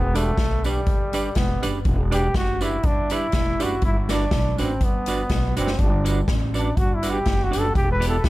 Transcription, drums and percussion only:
0.15 closed hi-hat medium
0.15 tambourine medium
0.38 kick loud
0.38 snare loud
0.38 closed hi-hat medium
0.64 closed hi-hat medium
0.64 tambourine medium
0.86 kick loud
0.86 closed hi-hat medium
1.13 closed hi-hat loud
1.13 tambourine medium
1.35 kick loud
1.35 snare loud
1.35 closed hi-hat medium
1.63 closed hi-hat loud
1.63 tambourine medium
1.85 kick loud
1.85 closed hi-hat medium
2.12 closed hi-hat loud
2.12 tambourine medium
2.34 kick loud
2.34 snare loud
2.34 closed hi-hat medium
2.61 closed hi-hat medium
2.61 tambourine medium
2.83 kick loud
2.83 closed hi-hat medium
3.10 closed hi-hat loud
3.10 tambourine medium
3.32 kick loud
3.32 snare loud
3.32 closed hi-hat medium
3.60 closed hi-hat medium
3.60 tambourine medium
3.82 kick loud
3.82 closed hi-hat medium
4.09 snare medium
4.09 closed hi-hat medium
4.09 tambourine medium
4.31 kick loud
4.31 snare loud
4.31 closed hi-hat medium
4.58 closed hi-hat medium
4.58 tambourine medium
4.81 kick loud
4.81 closed hi-hat medium
5.06 closed hi-hat loud
5.06 tambourine medium
5.29 kick loud
5.29 snare loud
5.29 closed hi-hat medium
5.57 closed hi-hat medium
5.57 tambourine medium
5.67 snare medium
5.79 kick loud
5.79 closed hi-hat medium
6.06 closed hi-hat loud
6.06 tambourine medium
6.28 kick loud
6.28 snare loud
6.28 closed hi-hat medium
6.54 closed hi-hat medium
6.54 tambourine medium
6.77 kick loud
6.77 closed hi-hat medium
7.03 closed hi-hat loud
7.03 tambourine medium
7.26 kick loud
7.26 snare loud
7.26 closed hi-hat medium
7.53 closed hi-hat medium
7.53 tambourine medium
7.75 kick loud
7.75 closed hi-hat medium
8.02 closed hi-hat loud
8.02 tambourine medium
8.24 kick loud
8.24 snare loud
8.24 closed hi-hat medium

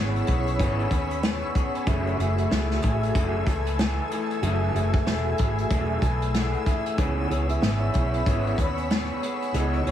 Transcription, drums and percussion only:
0.16 closed hi-hat soft
0.27 kick medium
0.27 closed hi-hat medium
0.47 closed hi-hat medium
0.60 kick loud
0.60 closed hi-hat loud
0.80 closed hi-hat soft
0.91 kick medium
0.91 closed hi-hat medium
1.11 closed hi-hat medium
1.23 snare loud
1.23 closed hi-hat medium
1.55 kick loud
1.55 closed hi-hat medium
1.75 closed hi-hat soft
1.87 kick loud
1.87 closed hi-hat medium
2.07 closed hi-hat soft
2.20 closed hi-hat medium
2.38 closed hi-hat soft
2.51 snare loud
2.51 closed hi-hat medium
2.71 snare soft
2.82 kick medium
2.82 closed hi-hat medium
3.03 closed hi-hat medium
3.15 kick loud
3.15 closed hi-hat loud
3.47 kick loud
3.47 closed hi-hat medium
3.66 closed hi-hat medium
3.79 snare loud
3.79 closed hi-hat loud
4.11 closed hi-hat medium
4.31 closed hi-hat soft
4.43 closed hi-hat loud
4.76 closed hi-hat medium
4.93 kick medium
4.93 closed hi-hat soft
5.07 snare loud
5.07 closed hi-hat medium
5.38 kick medium
5.38 closed hi-hat medium
5.58 closed hi-hat medium
5.71 kick loud
5.71 closed hi-hat loud
6.02 kick medium
6.02 closed hi-hat medium
6.22 closed hi-hat medium
6.34 snare loud
6.34 closed hi-hat medium
6.53 closed hi-hat soft
6.66 kick medium
6.66 closed hi-hat medium
6.86 closed hi-hat soft
6.98 kick loud
6.98 closed hi-hat medium
7.31 closed hi-hat medium
7.49 closed hi-hat medium
7.62 snare loud
7.62 closed hi-hat medium
7.94 kick medium
7.94 closed hi-hat medium
8.14 closed hi-hat medium
8.26 kick loud
8.26 closed hi-hat loud
8.47 closed hi-hat soft
8.58 kick medium
8.58 closed hi-hat medium
8.78 closed hi-hat medium
8.90 snare loud
8.90 closed hi-hat medium
9.23 closed hi-hat medium
9.42 closed hi-hat soft
9.54 closed hi-hat loud
9.74 closed hi-hat soft
9.87 closed hi-hat medium

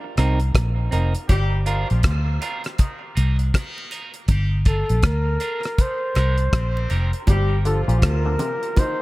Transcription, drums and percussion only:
0.17 cross-stick medium
0.17 closed hi-hat medium
0.40 closed hi-hat soft
0.55 kick loud
0.55 cross-stick loud
0.55 closed hi-hat medium
0.92 closed hi-hat medium
1.15 closed hi-hat medium
1.29 kick loud
1.29 closed hi-hat medium
1.29 high bongo medium
1.66 closed hi-hat medium
1.90 closed hi-hat soft
2.03 kick loud
2.03 cross-stick loud
2.03 closed hi-hat medium
2.42 closed hi-hat medium
2.42 low bongo medium
2.64 cross-stick medium
2.64 closed hi-hat medium
2.78 kick loud
2.78 closed hi-hat medium
2.78 high bongo medium
3.17 closed hi-hat medium
3.17 high bongo medium
3.39 closed hi-hat soft
3.54 kick loud
3.54 cross-stick loud
3.54 closed hi-hat loud
3.78 high bongo soft
3.91 closed hi-hat medium
3.91 low bongo medium
4.14 closed hi-hat medium
4.28 kick loud
4.28 closed hi-hat medium
4.28 high bongo medium
4.65 kick medium
4.65 closed hi-hat medium
4.89 closed hi-hat soft
5.02 kick loud
5.02 cross-stick loud
5.02 closed hi-hat medium
5.40 closed hi-hat medium
5.40 low bongo medium
5.63 cross-stick medium
5.63 closed hi-hat soft
5.78 kick loud
5.78 closed hi-hat medium
5.78 high bongo medium
6.15 cross-stick medium
6.15 closed hi-hat medium
6.15 high bongo medium
6.38 closed hi-hat soft
6.53 kick loud
6.53 cross-stick loud
6.53 closed hi-hat medium
6.77 high bongo soft
6.90 closed hi-hat medium
6.90 low bongo medium
7.13 closed hi-hat medium
7.27 kick medium
7.27 closed hi-hat medium
7.27 high bongo medium
7.65 closed hi-hat medium
7.89 closed hi-hat medium
8.02 kick loud
8.02 cross-stick loud
8.02 closed hi-hat medium
8.39 closed hi-hat medium
8.39 low bongo medium
8.63 closed hi-hat soft
8.76 kick loud
8.76 closed hi-hat medium
8.76 high bongo medium

